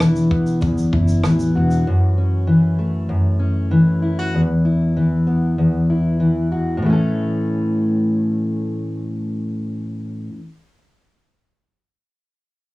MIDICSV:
0, 0, Header, 1, 4, 480
1, 0, Start_track
1, 0, Key_signature, 3, "major"
1, 0, Tempo, 619835
1, 1440, Time_signature, 4, 2, 24, 8
1, 9867, End_track
2, 0, Start_track
2, 0, Title_t, "Steel-string acoustic guitar"
2, 0, Program_c, 0, 25
2, 0, Note_on_c, 0, 40, 72
2, 0, Note_on_c, 0, 64, 54
2, 5, Note_on_c, 0, 52, 61
2, 238, Note_on_c, 0, 59, 52
2, 462, Note_off_c, 0, 40, 0
2, 472, Note_on_c, 0, 40, 69
2, 713, Note_off_c, 0, 64, 0
2, 716, Note_on_c, 0, 64, 54
2, 958, Note_off_c, 0, 52, 0
2, 962, Note_on_c, 0, 52, 58
2, 1202, Note_on_c, 0, 66, 55
2, 1436, Note_off_c, 0, 40, 0
2, 1449, Note_on_c, 0, 42, 72
2, 1487, Note_off_c, 0, 59, 0
2, 1683, Note_off_c, 0, 64, 0
2, 1686, Note_on_c, 0, 61, 52
2, 1911, Note_off_c, 0, 52, 0
2, 1914, Note_on_c, 0, 52, 60
2, 1937, Note_off_c, 0, 66, 0
2, 2158, Note_on_c, 0, 57, 48
2, 2383, Note_off_c, 0, 42, 0
2, 2393, Note_on_c, 0, 42, 65
2, 2620, Note_off_c, 0, 61, 0
2, 2629, Note_on_c, 0, 61, 54
2, 2871, Note_off_c, 0, 52, 0
2, 2874, Note_on_c, 0, 52, 59
2, 3115, Note_on_c, 0, 64, 52
2, 3243, Note_off_c, 0, 64, 0
2, 3243, Note_on_c, 0, 66, 44
2, 3356, Note_off_c, 0, 42, 0
2, 3365, Note_on_c, 0, 40, 71
2, 3403, Note_off_c, 0, 61, 0
2, 3407, Note_off_c, 0, 57, 0
2, 3410, Note_off_c, 0, 66, 0
2, 3600, Note_on_c, 0, 64, 48
2, 3843, Note_off_c, 0, 52, 0
2, 3846, Note_on_c, 0, 52, 56
2, 4080, Note_on_c, 0, 59, 44
2, 4313, Note_off_c, 0, 40, 0
2, 4323, Note_on_c, 0, 40, 64
2, 4565, Note_off_c, 0, 64, 0
2, 4568, Note_on_c, 0, 64, 48
2, 4798, Note_off_c, 0, 52, 0
2, 4801, Note_on_c, 0, 52, 55
2, 5049, Note_on_c, 0, 66, 52
2, 5246, Note_on_c, 0, 45, 70
2, 5283, Note_off_c, 0, 52, 0
2, 5286, Note_on_c, 0, 52, 70
2, 5310, Note_off_c, 0, 59, 0
2, 5313, Note_on_c, 0, 57, 69
2, 5330, Note_off_c, 0, 40, 0
2, 5333, Note_off_c, 0, 66, 0
2, 5340, Note_off_c, 0, 64, 0
2, 5343, Note_on_c, 0, 61, 74
2, 5366, Note_on_c, 0, 69, 74
2, 7956, Note_off_c, 0, 45, 0
2, 7996, Note_off_c, 0, 52, 0
2, 8024, Note_off_c, 0, 57, 0
2, 8053, Note_off_c, 0, 61, 0
2, 8077, Note_off_c, 0, 69, 0
2, 9867, End_track
3, 0, Start_track
3, 0, Title_t, "Upright bass"
3, 0, Program_c, 1, 32
3, 0, Note_on_c, 1, 28, 79
3, 487, Note_off_c, 1, 28, 0
3, 487, Note_on_c, 1, 30, 67
3, 681, Note_off_c, 1, 30, 0
3, 724, Note_on_c, 1, 30, 80
3, 919, Note_off_c, 1, 30, 0
3, 974, Note_on_c, 1, 33, 73
3, 1165, Note_off_c, 1, 33, 0
3, 1216, Note_on_c, 1, 28, 77
3, 1407, Note_off_c, 1, 28, 0
3, 9867, End_track
4, 0, Start_track
4, 0, Title_t, "Drums"
4, 3, Note_on_c, 9, 37, 107
4, 8, Note_on_c, 9, 82, 65
4, 80, Note_off_c, 9, 37, 0
4, 86, Note_off_c, 9, 82, 0
4, 123, Note_on_c, 9, 82, 39
4, 201, Note_off_c, 9, 82, 0
4, 241, Note_on_c, 9, 36, 76
4, 318, Note_off_c, 9, 36, 0
4, 360, Note_on_c, 9, 82, 44
4, 438, Note_off_c, 9, 82, 0
4, 477, Note_on_c, 9, 82, 53
4, 483, Note_on_c, 9, 36, 75
4, 554, Note_off_c, 9, 82, 0
4, 561, Note_off_c, 9, 36, 0
4, 604, Note_on_c, 9, 82, 43
4, 682, Note_off_c, 9, 82, 0
4, 720, Note_on_c, 9, 36, 82
4, 798, Note_off_c, 9, 36, 0
4, 837, Note_on_c, 9, 82, 47
4, 914, Note_off_c, 9, 82, 0
4, 958, Note_on_c, 9, 37, 98
4, 965, Note_on_c, 9, 82, 66
4, 1035, Note_off_c, 9, 37, 0
4, 1042, Note_off_c, 9, 82, 0
4, 1081, Note_on_c, 9, 82, 53
4, 1158, Note_off_c, 9, 82, 0
4, 1321, Note_on_c, 9, 82, 37
4, 1399, Note_off_c, 9, 82, 0
4, 9867, End_track
0, 0, End_of_file